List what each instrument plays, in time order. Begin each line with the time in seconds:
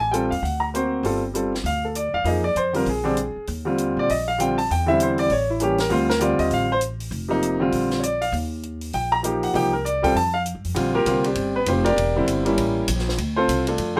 Already playing: upright bass A1
0.00 grand piano G#5
0.11 grand piano G3 C4 F4 A4 G5, closed hi-hat
0.31 upright bass D#2, grand piano F5, open hi-hat
0.42 upright bass D2, grand piano F#5, open hi-hat
0.60 grand piano A#5
0.74 grand piano A#3 C4 F#4 C5, closed hi-hat
1.03 upright bass G1, grand piano G3 C4 F4 A4, open hi-hat
1.34 grand piano G3 C4 F4 A4, closed hi-hat
1.55 snare
1.64 upright bass D2, grand piano F5, open hi-hat
1.85 grand piano A4
1.95 grand piano D5, closed hi-hat
2.14 upright bass E2, grand piano F5
2.24 upright bass F2, grand piano F3 A#3 D#4 G#4 D#5, open hi-hat
2.44 grand piano D5
2.55 upright bass F2, grand piano C5, closed hi-hat
2.73 grand piano D3 G3 C4 F4 A#4, open hi-hat
2.86 upright bass A#1, grand piano G#4, open hi-hat
3.04 grand piano D3 G3 C4 D4
3.17 closed hi-hat
3.36 muted upright bass stroke
3.47 upright bass D#2, open hi-hat
3.65 grand piano D3 G3 C4 F4
3.78 closed hi-hat
3.97 upright bass A#2, grand piano D5
4.09 upright bass A#1, grand piano D#5, open hi-hat
4.28 grand piano F5
4.38 grand piano D3 G3 C4 F4 G5, closed hi-hat
4.58 grand piano A5, open hi-hat
4.71 upright bass E2, grand piano G5, open hi-hat
4.86 grand piano D3 G3 C4 E4 E5
5.00 grand piano C5, closed hi-hat
5.18 grand piano D5, open hi-hat
5.30 upright bass A1, grand piano C#5, open hi-hat
5.50 grand piano E4
5.60 grand piano E3 G3 A#3 C#4 G4, closed hi-hat
5.78 grand piano A#4, snare, open hi-hat
5.89 upright bass D2, grand piano D3 G3 C4 F4 C5, open hi-hat
6.10 grand piano A#4, snare
6.19 grand piano D3 G3 C4 F4 D5, closed hi-hat
6.39 upright bass D#2, grand piano D#5, open hi-hat
6.51 upright bass A1, grand piano F5, open hi-hat
6.72 grand piano C5
6.81 closed hi-hat
7.00 open hi-hat
7.11 upright bass F1, open hi-hat
7.28 grand piano C3 F3 A#3 D#4
7.42 closed hi-hat
7.60 grand piano D3 G3 C4 F4
7.72 upright bass A#1, open hi-hat
7.91 snare
8.00 grand piano C#5 D5, closed hi-hat
8.21 grand piano F5, open hi-hat
8.32 upright bass D#2, open hi-hat
8.63 closed hi-hat
8.81 open hi-hat
8.93 upright bass A#1, grand piano G5, open hi-hat
9.12 grand piano A#5
9.23 grand piano F3 A#3 D#4 G4, closed hi-hat
9.43 grand piano F#5, open hi-hat
9.54 upright bass C2, grand piano F3 A#3 D#4 G4 G5, open hi-hat
9.73 grand piano A#4
9.85 grand piano D5, closed hi-hat
10.02 grand piano G3 C4 F4 A4 G5, kick, open hi-hat
10.14 upright bass F2, grand piano A5, open hi-hat
10.34 grand piano F5
10.46 closed hi-hat
10.55 upright bass G2
10.64 upright bass F2, open hi-hat
10.75 upright bass A#1, grand piano D3 G3 C4 F4, ride
10.94 grand piano A#3 F4 G4 A#4
11.05 upright bass C2, grand piano D3 G3 C4 F4, hi-hat pedal, ride
11.24 grand piano G3 C4 D4 G4, ride
11.35 upright bass G1, ride
11.56 grand piano B3 B4
11.66 upright bass F1, grand piano C4 F4 G4 C5, hi-hat pedal, ride
11.84 grand piano D4 G4 A#4 D5, ride
11.96 upright bass E1, ride
12.16 grand piano D3 G3 C4 E4
12.26 upright bass G1, hi-hat pedal, ride
12.45 grand piano G3 A#3 C#4 E4, ride
12.57 upright bass A1, ride
12.88 upright bass A#1, hi-hat pedal, ride
12.99 snare
13.09 snare
13.18 upright bass D2, ride
13.36 grand piano C4 F4 A4 C5
13.48 upright bass C2, hi-hat pedal, ride
13.67 grand piano A3 D4 F4 A4, ride
13.78 upright bass F2, ride
13.96 grand piano D3 G3 C4 A4 C5